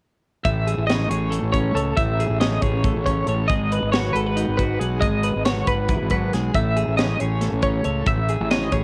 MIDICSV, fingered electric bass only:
0, 0, Header, 1, 2, 480
1, 0, Start_track
1, 0, Tempo, 435098
1, 496, Time_signature, 7, 3, 24, 8
1, 9751, End_track
2, 0, Start_track
2, 0, Title_t, "Fingered electric bass"
2, 0, Program_c, 0, 33
2, 497, Note_on_c, 0, 33, 80
2, 814, Note_off_c, 0, 33, 0
2, 857, Note_on_c, 0, 33, 82
2, 1174, Note_off_c, 0, 33, 0
2, 1213, Note_on_c, 0, 33, 77
2, 1532, Note_off_c, 0, 33, 0
2, 1571, Note_on_c, 0, 33, 74
2, 1891, Note_off_c, 0, 33, 0
2, 1930, Note_on_c, 0, 37, 78
2, 2145, Note_off_c, 0, 37, 0
2, 2182, Note_on_c, 0, 33, 79
2, 2497, Note_off_c, 0, 33, 0
2, 2533, Note_on_c, 0, 33, 85
2, 2853, Note_off_c, 0, 33, 0
2, 2904, Note_on_c, 0, 33, 75
2, 3219, Note_off_c, 0, 33, 0
2, 3261, Note_on_c, 0, 33, 72
2, 3577, Note_off_c, 0, 33, 0
2, 3615, Note_on_c, 0, 33, 78
2, 3828, Note_off_c, 0, 33, 0
2, 3864, Note_on_c, 0, 32, 80
2, 4179, Note_off_c, 0, 32, 0
2, 4217, Note_on_c, 0, 32, 84
2, 4535, Note_off_c, 0, 32, 0
2, 4571, Note_on_c, 0, 32, 79
2, 4891, Note_off_c, 0, 32, 0
2, 4944, Note_on_c, 0, 32, 68
2, 5259, Note_off_c, 0, 32, 0
2, 5303, Note_on_c, 0, 35, 76
2, 5513, Note_off_c, 0, 35, 0
2, 5539, Note_on_c, 0, 32, 79
2, 5856, Note_off_c, 0, 32, 0
2, 5912, Note_on_c, 0, 32, 84
2, 6223, Note_off_c, 0, 32, 0
2, 6256, Note_on_c, 0, 32, 76
2, 6574, Note_off_c, 0, 32, 0
2, 6630, Note_on_c, 0, 32, 66
2, 6942, Note_off_c, 0, 32, 0
2, 6992, Note_on_c, 0, 35, 72
2, 7197, Note_off_c, 0, 35, 0
2, 7222, Note_on_c, 0, 33, 78
2, 7537, Note_off_c, 0, 33, 0
2, 7582, Note_on_c, 0, 33, 83
2, 7897, Note_off_c, 0, 33, 0
2, 7952, Note_on_c, 0, 33, 73
2, 8262, Note_off_c, 0, 33, 0
2, 8298, Note_on_c, 0, 33, 72
2, 8614, Note_off_c, 0, 33, 0
2, 8664, Note_on_c, 0, 37, 80
2, 8872, Note_off_c, 0, 37, 0
2, 8905, Note_on_c, 0, 33, 75
2, 9218, Note_off_c, 0, 33, 0
2, 9271, Note_on_c, 0, 33, 89
2, 9581, Note_off_c, 0, 33, 0
2, 9625, Note_on_c, 0, 33, 80
2, 9751, Note_off_c, 0, 33, 0
2, 9751, End_track
0, 0, End_of_file